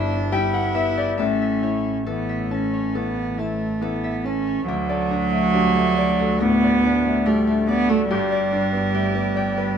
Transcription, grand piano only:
0, 0, Header, 1, 2, 480
1, 0, Start_track
1, 0, Key_signature, 2, "major"
1, 0, Tempo, 868307
1, 661, Time_signature, 4, 2, 24, 8
1, 3543, Tempo, 842697
1, 5461, End_track
2, 0, Start_track
2, 0, Title_t, "Grand piano"
2, 0, Program_c, 0, 0
2, 0, Control_c, 0, 64, 127
2, 0, Note_on_c, 0, 43, 59
2, 0, Note_on_c, 0, 55, 57
2, 0, Note_on_c, 0, 59, 55
2, 0, Note_on_c, 0, 64, 55
2, 0, Note_on_c, 0, 83, 98
2, 157, Note_off_c, 0, 83, 0
2, 178, Note_off_c, 0, 55, 0
2, 178, Note_on_c, 0, 55, 55
2, 179, Note_on_c, 0, 79, 86
2, 290, Note_off_c, 0, 79, 0
2, 298, Note_on_c, 0, 78, 74
2, 324, Note_off_c, 0, 64, 0
2, 410, Note_off_c, 0, 78, 0
2, 414, Note_off_c, 0, 59, 0
2, 414, Note_on_c, 0, 59, 51
2, 414, Note_on_c, 0, 76, 80
2, 528, Note_off_c, 0, 76, 0
2, 539, Note_on_c, 0, 74, 68
2, 563, Note_off_c, 0, 55, 0
2, 639, Note_off_c, 0, 43, 0
2, 651, Note_on_c, 0, 76, 77
2, 652, Note_off_c, 0, 74, 0
2, 657, Note_on_c, 0, 45, 61
2, 659, Note_off_c, 0, 59, 0
2, 672, Control_c, 0, 64, 0
2, 756, Control_c, 0, 64, 127
2, 902, Note_on_c, 0, 64, 47
2, 1146, Note_on_c, 0, 52, 46
2, 1290, Note_off_c, 0, 64, 0
2, 1386, Note_on_c, 0, 61, 45
2, 1534, Note_off_c, 0, 52, 0
2, 1607, Note_off_c, 0, 45, 0
2, 1633, Note_on_c, 0, 52, 44
2, 1775, Note_off_c, 0, 61, 0
2, 1869, Note_on_c, 0, 64, 47
2, 2016, Note_off_c, 0, 52, 0
2, 2109, Note_on_c, 0, 52, 48
2, 2250, Note_off_c, 0, 64, 0
2, 2320, Note_off_c, 0, 76, 0
2, 2347, Note_on_c, 0, 61, 45
2, 2489, Note_off_c, 0, 52, 0
2, 2584, Note_off_c, 0, 61, 0
2, 2585, Note_on_c, 0, 38, 67
2, 2596, Control_c, 0, 64, 0
2, 2695, Control_c, 0, 64, 127
2, 2704, Note_on_c, 0, 74, 53
2, 2822, Note_on_c, 0, 62, 53
2, 2892, Note_off_c, 0, 74, 0
2, 2939, Note_on_c, 0, 57, 54
2, 3011, Note_off_c, 0, 62, 0
2, 3062, Note_on_c, 0, 55, 47
2, 3129, Note_off_c, 0, 57, 0
2, 3179, Note_off_c, 0, 55, 0
2, 3182, Note_on_c, 0, 57, 52
2, 3303, Note_on_c, 0, 74, 56
2, 3374, Note_off_c, 0, 57, 0
2, 3428, Note_on_c, 0, 69, 53
2, 3495, Note_off_c, 0, 74, 0
2, 3520, Note_off_c, 0, 38, 0
2, 3547, Note_on_c, 0, 45, 52
2, 3619, Note_off_c, 0, 69, 0
2, 3670, Note_on_c, 0, 74, 55
2, 3741, Note_off_c, 0, 45, 0
2, 3792, Note_on_c, 0, 62, 54
2, 3862, Note_off_c, 0, 74, 0
2, 3912, Note_on_c, 0, 57, 57
2, 3982, Note_off_c, 0, 62, 0
2, 4034, Note_on_c, 0, 55, 52
2, 4102, Note_off_c, 0, 57, 0
2, 4151, Note_off_c, 0, 55, 0
2, 4153, Note_on_c, 0, 57, 50
2, 4271, Note_on_c, 0, 74, 54
2, 4341, Note_off_c, 0, 57, 0
2, 4390, Note_on_c, 0, 69, 54
2, 4460, Note_off_c, 0, 74, 0
2, 4508, Note_off_c, 0, 69, 0
2, 4510, Note_on_c, 0, 43, 68
2, 4517, Control_c, 0, 64, 0
2, 4595, Control_c, 0, 64, 127
2, 4623, Note_on_c, 0, 74, 52
2, 4746, Note_on_c, 0, 62, 51
2, 4815, Note_off_c, 0, 74, 0
2, 4864, Note_on_c, 0, 59, 51
2, 4936, Note_off_c, 0, 62, 0
2, 4987, Note_on_c, 0, 57, 45
2, 5055, Note_off_c, 0, 59, 0
2, 5103, Note_on_c, 0, 59, 52
2, 5104, Note_off_c, 0, 57, 0
2, 5221, Note_on_c, 0, 74, 53
2, 5295, Note_off_c, 0, 59, 0
2, 5347, Note_on_c, 0, 71, 54
2, 5414, Note_off_c, 0, 74, 0
2, 5442, Note_off_c, 0, 43, 0
2, 5461, Note_off_c, 0, 71, 0
2, 5461, End_track
0, 0, End_of_file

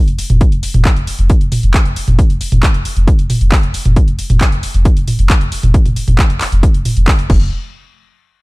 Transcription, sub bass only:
0, 0, Header, 1, 2, 480
1, 0, Start_track
1, 0, Tempo, 444444
1, 442, Time_signature, 4, 2, 24, 8
1, 9094, End_track
2, 0, Start_track
2, 0, Title_t, "Sub bass"
2, 0, Program_c, 0, 38
2, 84, Note_on_c, 0, 29, 77
2, 199, Note_off_c, 0, 29, 0
2, 324, Note_on_c, 0, 29, 81
2, 439, Note_off_c, 0, 29, 0
2, 564, Note_on_c, 0, 29, 77
2, 679, Note_off_c, 0, 29, 0
2, 804, Note_on_c, 0, 29, 79
2, 919, Note_off_c, 0, 29, 0
2, 1044, Note_on_c, 0, 29, 79
2, 1159, Note_off_c, 0, 29, 0
2, 1283, Note_on_c, 0, 29, 84
2, 1399, Note_off_c, 0, 29, 0
2, 1523, Note_on_c, 0, 29, 78
2, 1639, Note_off_c, 0, 29, 0
2, 1764, Note_on_c, 0, 29, 82
2, 1879, Note_off_c, 0, 29, 0
2, 2003, Note_on_c, 0, 29, 76
2, 2119, Note_off_c, 0, 29, 0
2, 2243, Note_on_c, 0, 29, 83
2, 2359, Note_off_c, 0, 29, 0
2, 2483, Note_on_c, 0, 29, 76
2, 2599, Note_off_c, 0, 29, 0
2, 2723, Note_on_c, 0, 29, 82
2, 2839, Note_off_c, 0, 29, 0
2, 2963, Note_on_c, 0, 29, 80
2, 3078, Note_off_c, 0, 29, 0
2, 3203, Note_on_c, 0, 29, 85
2, 3319, Note_off_c, 0, 29, 0
2, 3443, Note_on_c, 0, 29, 78
2, 3558, Note_off_c, 0, 29, 0
2, 3683, Note_on_c, 0, 29, 82
2, 3799, Note_off_c, 0, 29, 0
2, 3923, Note_on_c, 0, 29, 77
2, 4039, Note_off_c, 0, 29, 0
2, 4164, Note_on_c, 0, 29, 84
2, 4279, Note_off_c, 0, 29, 0
2, 4404, Note_on_c, 0, 29, 76
2, 4519, Note_off_c, 0, 29, 0
2, 4644, Note_on_c, 0, 29, 83
2, 4759, Note_off_c, 0, 29, 0
2, 4883, Note_on_c, 0, 29, 77
2, 4999, Note_off_c, 0, 29, 0
2, 5123, Note_on_c, 0, 29, 85
2, 5239, Note_off_c, 0, 29, 0
2, 5363, Note_on_c, 0, 29, 78
2, 5479, Note_off_c, 0, 29, 0
2, 5603, Note_on_c, 0, 29, 82
2, 5719, Note_off_c, 0, 29, 0
2, 5843, Note_on_c, 0, 29, 77
2, 5959, Note_off_c, 0, 29, 0
2, 6083, Note_on_c, 0, 29, 83
2, 6199, Note_off_c, 0, 29, 0
2, 6323, Note_on_c, 0, 29, 76
2, 6439, Note_off_c, 0, 29, 0
2, 6562, Note_on_c, 0, 29, 83
2, 6678, Note_off_c, 0, 29, 0
2, 6803, Note_on_c, 0, 29, 78
2, 6919, Note_off_c, 0, 29, 0
2, 7044, Note_on_c, 0, 29, 86
2, 7159, Note_off_c, 0, 29, 0
2, 7283, Note_on_c, 0, 29, 79
2, 7399, Note_off_c, 0, 29, 0
2, 7523, Note_on_c, 0, 29, 84
2, 7639, Note_off_c, 0, 29, 0
2, 7763, Note_on_c, 0, 29, 76
2, 7875, Note_off_c, 0, 29, 0
2, 7881, Note_on_c, 0, 29, 95
2, 8105, Note_off_c, 0, 29, 0
2, 9094, End_track
0, 0, End_of_file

